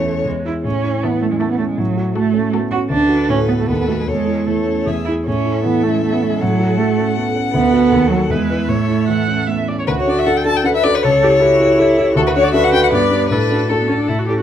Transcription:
Already playing: E2 E3 A3 C#4 E4 A4 C#5
0.06 A4
0.25 E2 E3 G#3
0.45 E4 G#4
0.64 A2 C#4
0.83 E4
1.03 E3 B3 E4 A4
1.21 A3 C#4
1.31 G#3
1.39 A3 B3 E4 A4
1.50 B3
1.58 A3 C#4
1.68 G#3
1.77 A2 F#3
1.97 F#4
2.15 A3 F#4 A4
2.34 C#4
2.53 B3 F#4 A4
2.71 C#4 F#4
2.90 D2 D4 A4 B4
3.09 F#4
3.29 A2 C#4
3.47 B3
3.58 A3
3.68 D#2 B3 A4 B4
3.79 B3
3.87 A3 F#4 A4
3.99 G#3
4.07 E2 G#3 A4 C#5
4.27 E4
4.46 E3 A3 A4 C#5
4.67 C#4
4.86 E2 G#4 E5
5.05 E4 G#4
5.24 A2 C#4 A4 E5
5.46 E4
5.64 E3 B3
5.83 A3 C#4
5.94 G#3
6.04 A3 B3
6.13 B3
6.22 A3 C#4
6.32 G#3
6.40 A2 F#3 F#5
6.60 F#4
6.77 A3
6.98 C#4
7.17 B3
7.35 C#4
7.52 D2 B3 A4
7.73 F#4 A4
7.92 D#2
8.09 F#3 F#4 A4
8.30 E2 G#3 B4 E5
8.50 E4 B4
8.68 A2 A3 C#5
8.88 E4
9.08 E3 F#5
9.28 C#4
9.47 B3 E5
9.68 C#4 D5
9.79 C#5
9.87 D2 F#4 B4
10.00 C#5
10.07 D4 F#4 A4 D5
10.19 E5
10.26 D4 F#4 A4 F#5
10.37 G5
10.45 D4 F#4 A4 A5
10.57 G5
10.64 D4 F#4 A4 B4 F#5
10.75 E5
10.83 D4 F#4 A4 D5
10.95 B4
11.02 C#2 A4 C#5
11.23 E4 G4 A4
11.40 E4 F#4 G4 A4
11.60 E4 G4 A4
11.78 E4 G4 A4
11.97 E4 G4 A4
12.15 D2 F#4 A4
12.27 B4
12.36 D4 F#4 A4 C#5
12.44 D5
12.54 D4 F#4 A4 B4 E5
12.64 F#5
12.72 D4 F#4 A4 G5
12.83 F#5
12.92 G2 B3 D5
13.11 D4 G4 B4
13.29 A2 D4 A4 B4
13.50 D4 F#4 A4
13.69 A3 D4 F#4 A4
13.80 B3
13.87 C#4 D4 F#4 A4
13.99 D4
14.08 A2 E4
14.19 F#4
14.27 C#4 E4 G4 A4
14.38 F#4

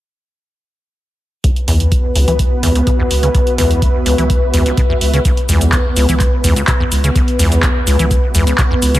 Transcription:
1.44 C#2 B3 F#4 B4, kick, closed hi-hat
1.56 closed hi-hat
1.68 C#2 E2, open hi-hat
1.80 closed hi-hat
1.92 C#2, kick, closed hi-hat
2.15 C#2, open hi-hat
2.27 C#2 E3 B4 E5, closed hi-hat
2.39 kick, closed hi-hat
2.63 C#2 E2, open hi-hat
2.75 C#2, closed hi-hat
2.87 B2, kick, closed hi-hat
2.99 E2
3.11 C#2, open hi-hat
3.23 C#3, closed hi-hat
3.35 C#2, kick, closed hi-hat
3.47 closed hi-hat
3.58 C#2 E2, open hi-hat
3.71 closed hi-hat
3.82 C#2, kick, closed hi-hat
4.06 C#2, open hi-hat
4.18 C#2 E3, closed hi-hat
4.30 kick, closed hi-hat
4.54 C#2 E2, open hi-hat
4.66 C#2, closed hi-hat
4.77 B2, kick, closed hi-hat
4.90 E2
5.01 C#2, open hi-hat
5.14 C#3, closed hi-hat
5.25 C#2 B3 B4, kick, closed hi-hat, shaker
5.37 closed hi-hat
5.49 C#2 E2, open hi-hat, shaker
5.61 closed hi-hat, shaker
5.72 C#2, kick, clap, closed hi-hat, shaker
5.96 C#2, open hi-hat, shaker
6.09 C#2 E3, closed hi-hat, shaker
6.20 kick, clap, closed hi-hat, shaker
6.44 C#2 E2, open hi-hat, shaker
6.56 C#2, closed hi-hat, shaker
6.68 B2, kick, clap, closed hi-hat, shaker
6.80 E2
6.92 C#2, open hi-hat, shaker
7.04 C#3, closed hi-hat, shaker
7.15 C#2, kick, closed hi-hat, shaker
7.28 closed hi-hat
7.39 C#2 E2, open hi-hat, shaker
7.52 closed hi-hat, shaker
7.63 C#2, kick, clap, closed hi-hat, shaker
7.87 C#2, open hi-hat, shaker
7.99 C#2 E3, closed hi-hat, shaker
8.11 kick, closed hi-hat, shaker
8.35 C#2 E2, open hi-hat, shaker
8.47 C#2, closed hi-hat, shaker
8.58 B2, kick, clap, closed hi-hat, shaker
8.71 E2
8.82 C#2, open hi-hat, shaker
8.95 C#3, closed hi-hat, shaker

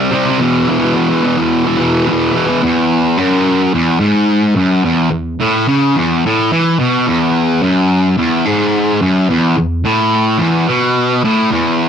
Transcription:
Already playing: G3 C4
0.11 C3 G3 C4
0.26 C4
0.30 G3
0.38 E2 B2
0.42 E3
0.65 E2 B2
0.70 E3
0.79 E3
0.84 B2
0.93 E2 B2 E3
1.09 E3
1.13 B2
1.23 E2 B2 E3
1.38 E3
1.42 B2
1.65 B2 E3
1.77 E2 B2
1.82 E3
2.07 E2 B2
2.11 E3
2.31 E2 B2
2.36 E3
2.46 B2 E3
2.62 E2
3.17 F#2
3.74 E2
4.00 G#2
4.56 F#2
4.85 E2
5.11 E2
5.40 A2
5.68 C#3
5.96 E2
6.25 A2
6.53 E3
6.80 B2
7.08 E2
7.62 F#2
8.17 E2
8.45 G#2
9.01 F#2
9.30 E2
9.58 E2
9.85 A2
10.39 E2
10.68 B2
11.24 A2
11.51 E2

